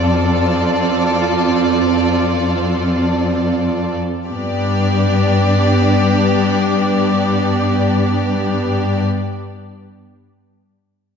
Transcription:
0.00 3.97 F2 soft
0.00 3.96 C4 soft
0.00 3.96 F4 soft
0.00 3.97 A4 soft
0.00 3.97 D5 soft
4.28 9.02 G2 soft
4.28 9.02 B3 soft
4.28 9.02 D4 soft
4.28 9.02 G4 soft
4.28 9.02 D5 soft

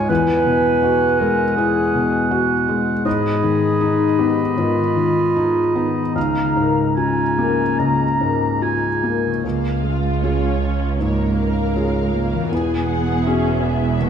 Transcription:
0.00 0.12 C#2 soft
0.00 0.12 G#2 soft
0.00 0.13 C#3 medium
0.00 0.12 G#3 soft
0.00 0.45 G#3 soft
0.00 0.12 C#4 soft
0.00 0.12 F4 soft
0.00 0.21 G#4 medium
0.00 2.80 G#5 medium
0.08 1.54 E2 medium
0.08 3.08 E3 medium
0.08 1.21 B4 medium
0.08 3.01 F#5 medium
0.46 1.06 B2 soft
0.46 1.19 G#3 soft
0.83 1.43 F#4 soft
1.20 1.93 G#3 soft
1.20 1.80 G#3 soft
1.20 1.56 A#4 medium
1.56 3.01 E2 soft
1.56 3.08 E4 soft
1.56 2.29 G#4 medium
1.95 2.54 B2 soft
1.95 2.67 G#3 soft
2.31 2.90 F#4 soft
2.68 6.58 G#3 soft
2.68 3.06 G#3 soft
3.04 6.19 G#2 medium
3.04 4.52 G#2 medium
3.04 4.20 G#4 medium
3.04 6.12 D#5 medium
3.04 6.12 B5 medium
3.43 4.03 D#3 soft
3.43 4.17 B3 soft
3.81 7.71 D#4 soft
3.81 4.41 D#4 soft
4.18 4.94 B3 soft
4.18 4.80 B3 soft
4.18 4.59 G4 medium
4.56 6.12 G#2 soft
4.56 6.19 D#3 soft
4.56 5.77 F4 medium
4.95 5.59 D#3 soft
4.95 5.74 B3 soft
5.36 6.00 D#4 soft
5.36 6.97 G#4 soft
5.76 6.16 B3 soft
5.76 6.19 B3 soft
5.76 6.16 D#4 medium
6.14 7.75 C#2 soft
6.14 9.25 C#3 soft
6.14 6.99 D#4 medium
6.14 6.80 F5 medium
6.14 6.95 A#5 soft
6.56 7.22 G#2 soft
6.56 7.37 A#3 soft
6.97 9.03 C#4 medium
6.97 7.62 F4 soft
6.97 8.61 G#4 soft
6.97 7.80 G#5 soft
6.97 9.06 A#5 soft
7.38 8.04 A#3 soft
7.38 8.19 A#3 soft
7.79 9.40 C#2 soft
7.79 11.69 G#3 soft
7.79 8.64 A#5 medium
8.20 8.87 G#2 soft
8.20 9.02 A#3 soft
8.62 9.28 F4 soft
8.62 9.38 G#4 soft
8.62 9.45 G#5 soft
9.03 9.44 A#3 soft
9.03 9.48 A#3 soft
9.26 12.45 C#3 soft
9.31 12.48 C#4 soft
9.35 12.50 F4 soft
9.40 12.47 C#2 soft
9.40 9.81 A#3 soft
9.40 10.96 F4 soft
9.40 12.46 G#4 soft
9.44 10.21 C#2 soft
9.44 12.48 C#2 soft
9.44 10.19 F5 soft
9.84 10.23 G#3 soft
10.23 10.60 C#4 soft
10.23 10.96 C#4 soft
10.23 10.96 F4 soft
10.23 10.97 G#4 soft
10.23 11.00 C#5 soft
10.62 11.00 C#4 soft
11.00 11.74 G#2 soft
11.00 11.76 A#3 soft
11.00 12.52 A#4 soft
11.00 11.38 C#5 soft
11.37 12.49 F5 soft
11.76 12.14 G#3 soft
11.76 12.47 C#4 soft
11.76 12.48 F4 soft
11.76 12.48 G#4 soft
12.14 12.51 A#3 soft
12.33 14.10 E3 soft
12.38 14.10 B3 soft
12.42 14.10 F#4 soft
12.47 14.10 G#4 soft
12.47 12.88 G#5 soft
12.51 14.10 E1 soft
12.51 14.10 E2 soft
12.51 13.24 E2 soft
12.51 13.25 B3 soft
12.51 14.02 G#4 soft
12.87 13.24 F#5 soft
13.23 13.97 B3 soft
13.23 13.63 C#4 medium
13.23 13.97 F#4 soft
13.23 13.97 G#4 soft
13.23 14.10 E5 soft
13.63 14.01 B3 soft
14.01 14.10 B2 soft
14.01 14.10 A#3 medium
14.01 14.10 F#4 soft

